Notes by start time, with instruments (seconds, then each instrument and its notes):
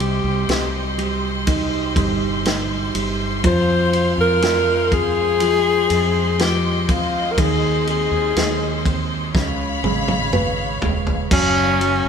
Already playing: fretless electric bass C2, felt piano C3, string section G4 C5 D#5 C6
0.00 felt piano G3, alto saxophone G4, ride
0.24 fretless electric bass C2
0.49 fretless electric bass C2, felt piano C3, snare, ride
0.98 felt piano G3, ride
1.47 felt piano D#4, kick, ride
1.96 fretless electric bass G1, felt piano G3, kick, ride
2.45 felt piano D#4, snare, ride
2.94 fretless electric bass G1, felt piano G3, ride
3.43 fretless electric bass F2, felt piano F3, string section G#3 F5, alto saxophone C5, kick, ride
3.92 felt piano C4, ride
4.18 fretless electric bass F2, alto saxophone A#4
4.42 felt piano F3, snare, ride
4.91 felt piano C4, alto saxophone G#4, kick, ride
5.40 felt piano F3, string section D#5, ride
5.90 fretless electric bass F2, felt piano C4, ride
6.39 felt piano F3, alto saxophone G4, snare, ride
6.83 alto saxophone G4
6.88 felt piano C4, alto saxophone F4, kick, ride
7.32 alto saxophone A#4
7.38 fretless electric bass D#2, felt piano D#3, alto saxophone G#4, kick, ride
7.87 felt piano C4, alto saxophone G#4, ride
8.12 fretless electric bass D#2
8.36 fretless electric bass D#2, felt piano D#3, snare, ride
8.85 felt piano C4, kick, ride
9.35 fretless electric bass C#2, felt piano C#3, string section C#5 F5 B5, kick, snare
9.83 fretless electric bass G#1, felt piano G#3, high tom
10.08 high tom
10.33 felt piano B4, mid tom
10.82 fretless electric bass D#1, felt piano G#3, floor tom
11.07 floor tom
11.30 fretless electric bass F#1, felt piano F#3, alto saxophone C#4, string section F#4 A#4, kick, crash
11.81 felt piano F#3, ride
12.05 fretless electric bass F#1